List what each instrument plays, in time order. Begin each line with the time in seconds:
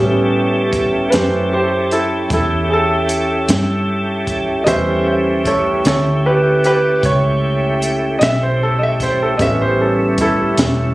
Already playing: fingered electric bass A2, grand piano G3 B3 C#4, tonewheel organ C#4 E4 G4 A4
0.73 kick, closed hi-hat
1.12 fingered electric bass F#2, grand piano A3 C#4 G4 B4 C5, snare, closed hi-hat
1.53 grand piano G4 C5
1.91 grand piano E4 A4, closed hi-hat
2.30 fingered electric bass E2, grand piano E4 A4, kick, closed hi-hat
2.69 grand piano G#4
2.73 grand piano A4
3.09 closed hi-hat
3.49 fingered electric bass G2, snare, closed hi-hat
4.27 kick, closed hi-hat
4.64 fingered electric bass E2, grand piano G3 C#4 B4 C5 D#5 E5, tonewheel organ A3 C#4 E4 G4, kick, closed hi-hat
5.07 grand piano C5 E5
5.45 grand piano A4 C#5, kick, closed hi-hat
5.85 fingered electric bass D2, grand piano A4 C#5, snare, closed hi-hat
6.26 grand piano G4 B4
6.64 grand piano G4 B4, closed hi-hat
7.03 fingered electric bass C#2, grand piano C#5, kick, closed hi-hat
7.82 closed hi-hat
8.19 fingered electric bass B1, grand piano D#5, snare, closed hi-hat
8.23 grand piano E5
8.43 grand piano C5
8.63 grand piano A4
8.79 grand piano D#5
8.83 grand piano E5
9.00 grand piano C5, kick, snare, closed hi-hat
9.22 grand piano A4
9.37 fingered electric bass A1, tonewheel organ G3 A3 C#4 E4, grand piano G3 B3 C#4 D#5, kick, closed hi-hat
9.42 grand piano E5
9.62 grand piano C5
9.81 grand piano A4
10.18 grand piano E4 A4, kick, closed hi-hat
10.57 fingered electric bass E1, snare, closed hi-hat